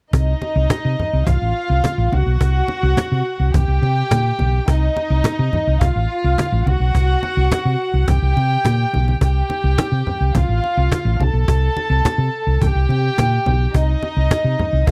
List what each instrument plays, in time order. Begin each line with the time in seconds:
0.13 fingered electric bass C2, violin section D#4 D#5, cajon bass
0.42 muted conga
0.56 fingered electric bass C2
0.70 cajon bass, cajon slap, high conga
0.85 fingered electric bass C3
0.99 low conga
1.13 fingered electric bass C2, cajon slap
1.27 fingered electric bass C2, violin section F4 F5, cajon bass, muted conga, low conga
1.42 fingered electric bass A1
1.70 fingered electric bass C2
1.84 cajon bass, cajon slap, high conga
1.98 fingered electric bass A1
2.12 fingered electric bass C2, violin section F#4 F#5, high conga
2.26 fingered electric bass B1, cajon slap
2.41 fingered electric bass C2, cajon bass
2.68 muted conga
2.83 fingered electric bass C2, cajon slap
2.97 cajon bass, cajon slap, high conga
3.12 fingered electric bass C3
3.40 fingered electric bass C2, cajon slap
3.54 fingered electric bass C2, violin section G4 G5, cajon bass, muted conga, low conga
3.68 fingered electric bass C2
3.82 fingered electric bass C3, muted conga
4.11 fingered electric bass A#2, cajon bass, cajon slap, high conga
4.39 fingered electric bass B1, high conga
4.54 cajon slap
4.68 fingered electric bass C2, violin section D#4 D#5, cajon bass
4.96 muted conga
5.10 fingered electric bass C2, cajon slap
5.24 cajon bass, cajon slap, high conga
5.39 fingered electric bass C3
5.53 low conga
5.67 fingered electric bass C2, cajon slap
5.81 fingered electric bass C2, violin section F4 F5, cajon bass, muted conga, low conga
5.96 fingered electric bass A1
6.24 fingered electric bass C2
6.38 cajon bass, cajon slap, high conga
6.52 fingered electric bass A1
6.66 fingered electric bass C2, violin section F#4 F#5, high conga
6.80 fingered electric bass B1, cajon slap
6.95 fingered electric bass C2, cajon bass
7.23 muted conga
7.37 fingered electric bass C2, cajon slap
7.51 cajon bass, cajon slap, high conga
7.65 fingered electric bass C3
7.94 fingered electric bass C2, cajon slap
8.07 fingered electric bass C2, violin section G4 G5, cajon bass, muted conga, low conga
8.22 fingered electric bass C2
8.37 fingered electric bass C3, muted conga
8.65 fingered electric bass A#2, cajon bass, cajon slap, high conga
8.93 fingered electric bass B1, high conga
9.08 high conga
9.21 fingered electric bass C2, violin section G4 G5, cajon bass
9.50 muted conga
9.64 fingered electric bass C2, cajon slap
9.78 cajon bass, cajon slap, high conga
9.92 fingered electric bass C3
10.07 low conga
10.21 fingered electric bass C2, cajon slap
10.35 fingered electric bass C2, violin section F4 F5, cajon bass, muted conga, low conga
10.49 fingered electric bass A1
10.64 muted conga
10.77 fingered electric bass C2, cajon slap
10.92 cajon bass, cajon slap, high conga
11.05 fingered electric bass A1
11.20 fingered electric bass C2, violin section A4 A5, high conga
11.33 fingered electric bass B1, cajon slap
11.48 fingered electric bass C2, cajon bass
11.77 muted conga
11.90 fingered electric bass C2, cajon slap
12.05 cajon bass, cajon slap, high conga
12.18 fingered electric bass C3
12.47 fingered electric bass C2, cajon slap
12.61 fingered electric bass C2, violin section G4 G5, cajon bass, muted conga, low conga
12.75 fingered electric bass C2
12.89 fingered electric bass C3, muted conga
13.04 cajon slap
13.18 fingered electric bass A#2, cajon bass, cajon slap, high conga
13.46 fingered electric bass B1, high conga
13.61 cajon slap
13.74 fingered electric bass C2, violin section D#4 D#5, cajon bass
14.03 muted conga
14.17 fingered electric bass C2
14.31 cajon bass, cajon slap, high conga
14.44 fingered electric bass C3
14.59 low conga
14.73 fingered electric bass C2, cajon slap
14.87 fingered electric bass C2, violin section F4 F5, cajon bass, muted conga, low conga